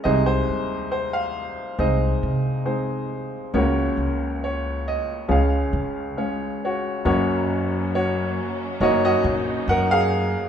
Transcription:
0.04 upright piano C2 C3 G#3 C4 D#4 C5 D#5, upright bass C2
0.26 upright piano C5
0.49 upright bass D#2
0.92 upright piano C5
1.13 upright piano F5
1.78 upright bass C2, upright piano G#3 C4 D#4 C5 D#5
2.23 upright bass C3
2.65 upright piano G#3 C4 D#4 C5
3.54 upright bass C#2, upright piano C#2 C#3 A#3 C#4 F#4 A#4 C#5
3.97 upright bass C#2
4.44 upright piano C#5
4.88 upright piano D#5
5.28 upright piano C#2 C#3 G#3 C#4 F4 G#4 C#5 F5, upright bass C#2
5.73 upright bass C#3
6.17 upright piano G#3 C#4 C#5 F5
6.65 upright piano F#4 C#5
7.04 upright piano F#1 F#2 A#3 C#4 F#4 C#5, upright bass F#2, string section F#3 A#3 C#4
7.95 upright piano F#4 C#5
8.79 upright piano F#1 F#2 A#3 D#4 F#4 C#5 D#5, upright bass F#2, string section D#4
9.05 upright piano F#4 D#5
9.24 upright bass A#1
9.68 upright bass F#2, upright piano A#4 F#5
9.91 upright piano G#4 F5

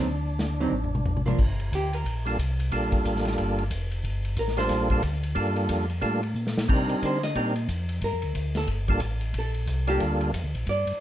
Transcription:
Already playing: tonewheel organ D4
0.04 tonewheel organ D2
0.39 snare, closed hi-hat
0.60 hollow-body jazz guitar D3 F#3 C4 D#4
0.71 tonewheel organ A1
0.84 floor tom
0.95 mid tom
1.05 floor tom
1.17 mid tom
1.26 hollow-body jazz guitar F3 A#3 D4, mid tom
1.39 tonewheel organ G1, kick, crash
1.60 ride
1.72 tonewheel organ D2, hollow-body jazz guitar G4, kick, hi-hat pedal, ride
1.93 hollow-body jazz guitar A#4, ride
2.05 tonewheel organ A#1, kick, ride
2.25 tonewheel organ G3 A#3 D4 F4 A4, ride
2.38 tonewheel organ C2, kick, hi-hat pedal, ride
2.60 ride
2.72 tonewheel organ A#1 G3 A#3 D4 F4 A4, kick, ride
2.92 tonewheel organ A#1, kick, ride
3.05 tonewheel organ A1, kick, hi-hat pedal, ride
3.16 snare
3.25 snare, ride
3.38 tonewheel organ G1, kick, ride
3.58 ride
3.71 tonewheel organ F1, kick, hi-hat pedal, ride
3.91 ride
4.04 tonewheel organ G1, kick, ride
4.25 ride
4.37 tonewheel organ A1, hollow-body jazz guitar A#4, kick, hi-hat pedal, ride
4.48 snare
4.57 tonewheel organ G3 A#3 D4 F4 A4, hollow-body jazz guitar C5, snare, ride
4.69 tonewheel organ A#1, kick, snare, ride
4.90 tonewheel organ G3 A#3 D4 F4 A4, kick, ride
5.02 tonewheel organ D2, kick, hi-hat pedal, ride
5.23 ride
5.35 tonewheel organ G2 G3 A#3 D4 F4 A4, kick, ride
5.56 ride
5.69 tonewheel organ F2, kick, hi-hat pedal, ride
5.90 ride
6.01 tonewheel organ A2 G3 A#3 D4 F4 A4, kick, ride
6.23 ride
6.34 tonewheel organ A#2, hi-hat pedal
6.47 snare
6.58 snare
6.68 tonewheel organ C3 G3 C4 D4 D#4 A#4, kick, crash
6.88 tonewheel organ C3, ride
7.02 tonewheel organ D3, hollow-body jazz guitar C5, kick, hi-hat pedal, ride
7.23 hollow-body jazz guitar D#5, snare, ride
7.35 tonewheel organ A#2 G3 C4 D4 D#4 A#4, kick, ride
7.56 ride
7.68 tonewheel organ F2, kick, hi-hat pedal, ride
7.89 ride
8.02 tonewheel organ G2, hollow-body jazz guitar A#4, kick, ride
8.13 tonewheel organ F2
8.22 tonewheel organ D2, ride
8.34 tonewheel organ D2, kick, hi-hat pedal, ride
8.55 hollow-body jazz guitar A4, snare, ride
8.67 tonewheel organ G1, kick, ride
8.88 tonewheel organ G3 A#3 D4 F4 A4, kick, ride
9.00 tonewheel organ A1, kick, hi-hat pedal, ride
9.21 ride
9.34 tonewheel organ A#1, kick, ride
9.39 hollow-body jazz guitar A4
9.54 ride
9.67 tonewheel organ C2, kick, hi-hat pedal, ride
9.87 tonewheel organ G3 A#3 D4 F4 A4, hollow-body jazz guitar G4, ride
10.00 tonewheel organ D2, kick, ride
10.21 ride
10.33 tonewheel organ F2, kick, hi-hat pedal, ride
10.44 tonewheel organ D2
10.54 tonewheel organ A#1, ride
10.67 tonewheel organ G2, hollow-body jazz guitar D5, kick, ride
10.86 tonewheel organ G2, ride

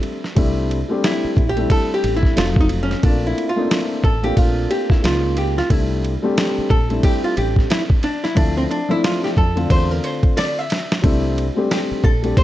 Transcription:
Already playing: grand piano G3 A3 C4 D4 E5
0.03 ride
0.24 snare
0.35 fretless electric bass C2, grand piano G3 A3 C4 D4 E4, kick, ride
0.71 ride
0.88 grand piano G3 A3 C4 D4 G4
1.04 hollow-body jazz guitar E4, snare, hi-hat pedal, ride
1.24 muted fretless electric bass stroke
1.37 fretless electric bass A#1, kick, ride
1.49 hollow-body jazz guitar G4
1.56 grand piano G3 A3 C4 D4 E4, ride
1.70 hollow-body jazz guitar A4, kick, ride
1.94 hollow-body jazz guitar G4
2.04 fretless electric bass A1, ride
2.16 hollow-body jazz guitar E4
2.23 kick, snare
2.35 fretless electric bass F1, grand piano F#3 A3 C4 D#4 F4, hollow-body jazz guitar F4, snare, hi-hat pedal, ride
2.56 kick
2.61 hollow-body jazz guitar D#4
2.69 ride
2.83 hollow-body jazz guitar C#4
2.91 snare, ride
3.03 fretless electric bass A#1, grand piano A3 A#3 C4 D4 F4, hollow-body jazz guitar D4, kick, ride
3.27 hollow-body jazz guitar E4
3.38 ride
3.49 hollow-body jazz guitar F4
3.56 grand piano A3 A#3 C4 D4 D#4
3.65 grand piano E4
3.71 snare, hi-hat pedal, ride
4.04 fretless electric bass A1, hollow-body jazz guitar A4, kick, ride
4.23 grand piano A3 A#3 C4 D4 F4, hollow-body jazz guitar G4, ride
4.37 fretless electric bass A#1, hollow-body jazz guitar F4, kick, ride
4.71 hollow-body jazz guitar G4, ride
4.90 hollow-body jazz guitar E4, kick, snare
5.02 fretless electric bass C#2, grand piano G#3 A#3 C#4 D#4 F4, hollow-body jazz guitar F4, snare, hi-hat pedal, ride
5.37 hollow-body jazz guitar G4, ride
5.58 hollow-body jazz guitar F4, snare, ride
5.69 fretless electric bass C2, grand piano G3 A3 C4 D4 E4, hollow-body jazz guitar E4, kick, ride
6.04 ride
6.22 grand piano G3 A3 C4 D4 G4
6.38 snare, hi-hat pedal, ride
6.58 muted fretless electric bass stroke
6.70 fretless electric bass A#1, hollow-body jazz guitar A4, kick, ride
6.89 grand piano G3 A3 C4 D4 E4, ride
7.03 hollow-body jazz guitar G4, kick, ride
7.24 hollow-body jazz guitar F4
7.37 fretless electric bass A1, hollow-body jazz guitar G4, ride
7.56 kick, snare
7.70 hollow-body jazz guitar E4, snare, hi-hat pedal, ride
7.90 kick
8.03 hollow-body jazz guitar D4, ride
8.24 hollow-body jazz guitar E4, snare, ride
8.35 fretless electric bass D2, grand piano F3 A3 C4 D4 E4, hollow-body jazz guitar D4, kick, ride
8.57 hollow-body jazz guitar C4
8.71 hollow-body jazz guitar D4, ride
8.89 grand piano F3 A3 C4 D4 E4, hollow-body jazz guitar E4
9.04 hollow-body jazz guitar F4, snare, hi-hat pedal, ride
9.24 hollow-body jazz guitar G4, snare
9.37 fretless electric bass F2, hollow-body jazz guitar A4, kick, ride
9.55 grand piano D3 A3 C4 D4 F4, ride
9.70 fretless electric bass E2, hollow-body jazz guitar C5, kick, ride
9.91 hollow-body jazz guitar A#4
10.04 hollow-body jazz guitar C5, ride
10.23 kick, ride
10.37 hollow-body jazz guitar D5, snare, hi-hat pedal, ride
10.59 hollow-body jazz guitar E5
10.70 snare, ride
10.92 snare
11.02 fretless electric bass C2, grand piano G3 A3 C4 D4 E4, kick, ride
11.38 ride
11.55 grand piano G3 A3 C4 D4 G4
11.71 hollow-body jazz guitar G4, snare, hi-hat pedal, ride
11.91 muted fretless electric bass stroke
12.04 fretless electric bass A#1, hollow-body jazz guitar A4, kick, ride
12.22 grand piano G3 A3 C4 D4 G4, ride
12.37 hollow-body jazz guitar C5, kick, ride

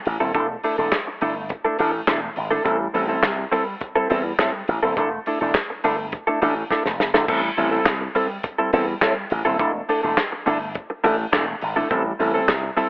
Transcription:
0.05 slap bass A1, muted clean electric guitar stroke, open hi-hat
0.20 slap bass D#1, clean electric guitar G3 C4 E4 A4
0.34 slap bass E1, clean electric guitar A3 D4 E4 A4, kick, closed hi-hat
0.49 muted clean electric guitar stroke
0.64 clean electric guitar A3 D4 E4 A4, open hi-hat
0.78 slap bass E1, clean electric guitar A3 D4 E4 A4
0.92 kick, snare, clap, closed hi-hat
1.07 muted clean electric guitar stroke
1.21 slap bass G1, clean electric guitar A3 D4 E4 A4, open hi-hat
1.37 muted clean electric guitar stroke
1.49 muted clean electric guitar stroke, kick, closed hi-hat
1.64 clean electric guitar A3 D4 E4 A4
1.79 slap bass A1, clean electric guitar A3 D4 E4 A4, open hi-hat
1.94 muted clean electric guitar stroke
2.07 slap bass E1, clean electric guitar A3 D4 E4 A4, kick, snare, clap, closed hi-hat
2.22 muted clean electric guitar stroke
2.36 slap bass G#1, muted clean electric guitar stroke, open hi-hat
2.51 clean electric guitar A3 D4 E4 A4
2.64 slap bass A1, clean electric guitar G3 C4 E4 A4, kick, closed hi-hat
2.80 muted clean electric guitar stroke
2.94 slap bass A1, clean electric guitar G3 C4 E4 A4, open hi-hat
3.08 clean electric guitar G3 C4 E4 A4
3.23 slap bass C2, kick, snare, clap, closed hi-hat
3.38 muted clean electric guitar stroke
3.52 clean electric guitar G3 C4 E4 A4, open hi-hat
3.66 muted clean electric guitar stroke
3.81 muted clean electric guitar stroke, kick, closed hi-hat
3.95 clean electric guitar G3 C4 E4 A4
4.10 slap bass E2, clean electric guitar G3 C4 E4 A4, open hi-hat
4.25 muted clean electric guitar stroke
4.39 slap bass A2, clean electric guitar G3 C4 E4 A4, kick, snare, clap, closed hi-hat
4.54 muted clean electric guitar stroke
4.68 slap bass A1, muted clean electric guitar stroke, open hi-hat
4.83 slap bass D#1, clean electric guitar G3 C4 E4 A4
4.97 slap bass E1, clean electric guitar A3 D4 E4 A4, kick, closed hi-hat
5.11 muted clean electric guitar stroke
5.26 clean electric guitar A3 D4 E4 A4, open hi-hat
5.41 slap bass E1, clean electric guitar A3 D4 E4 A4
5.54 kick, snare, clap, closed hi-hat
5.70 muted clean electric guitar stroke
5.84 slap bass G1, clean electric guitar A3 D4 E4 A4, open hi-hat
5.98 muted clean electric guitar stroke
6.12 muted clean electric guitar stroke, kick, closed hi-hat
6.27 clean electric guitar A3 D4 E4 A4
6.42 slap bass A1, clean electric guitar A3 D4 E4 A4, open hi-hat
6.56 muted clean electric guitar stroke
6.70 clean electric guitar A3 D4 E4 A4, kick, snare
6.85 slap bass E1, muted clean electric guitar stroke, snare
7.00 slap bass G1, muted clean electric guitar stroke, snare
7.14 slap bass G#1, clean electric guitar A3 D4 E4 A4, snare
7.28 slap bass A1, clean electric guitar G3 C4 E4 A4, kick, crash
7.43 muted clean electric guitar stroke
7.57 slap bass A1, clean electric guitar G3 C4 E4 A4, open hi-hat
7.71 clean electric guitar G3 C4 E4 A4
7.85 slap bass C2, kick, snare, clap, closed hi-hat
8.01 muted clean electric guitar stroke
8.15 clean electric guitar G3 C4 E4 A4, open hi-hat
8.30 muted clean electric guitar stroke
8.43 muted clean electric guitar stroke, kick, closed hi-hat
8.58 clean electric guitar G3 C4 E4 A4
8.73 slap bass E2, clean electric guitar G3 C4 E4 A4, open hi-hat
8.88 muted clean electric guitar stroke
9.01 slap bass A2, clean electric guitar G3 C4 E4 A4, kick, snare, clap, closed hi-hat
9.16 muted clean electric guitar stroke
9.30 slap bass A1, muted clean electric guitar stroke, open hi-hat
9.45 slap bass D#1, clean electric guitar G3 C4 E4 A4
9.59 slap bass E1, clean electric guitar A3 D4 E4 A4, kick, closed hi-hat
9.74 muted clean electric guitar stroke
9.89 clean electric guitar A3 D4 E4 A4, open hi-hat
10.03 slap bass E1, clean electric guitar A3 D4 E4 A4
10.17 kick, snare, clap, closed hi-hat
10.32 muted clean electric guitar stroke
10.46 slap bass G1, clean electric guitar A3 D4 E4 A4, open hi-hat
10.60 muted clean electric guitar stroke
10.75 kick, closed hi-hat
10.90 muted clean electric guitar stroke
11.04 slap bass A1, clean electric guitar A3 D4 E4 A4, open hi-hat
11.18 muted clean electric guitar stroke
11.32 slap bass E1, clean electric guitar A3 D4 E4 A4, kick, snare, clap, closed hi-hat
11.47 muted clean electric guitar stroke
11.61 slap bass G#1, muted clean electric guitar stroke, open hi-hat
11.76 clean electric guitar A3 D4 E4 A4
11.90 slap bass A1, clean electric guitar G3 C4 E4 A4, kick, closed hi-hat
12.05 muted clean electric guitar stroke
12.19 slap bass A1, clean electric guitar G3 C4 E4 A4, open hi-hat
12.34 clean electric guitar G3 C4 E4 A4
12.48 slap bass C2, kick, snare, clap, closed hi-hat
12.63 muted clean electric guitar stroke
12.77 clean electric guitar G3 C4 E4 A4, open hi-hat

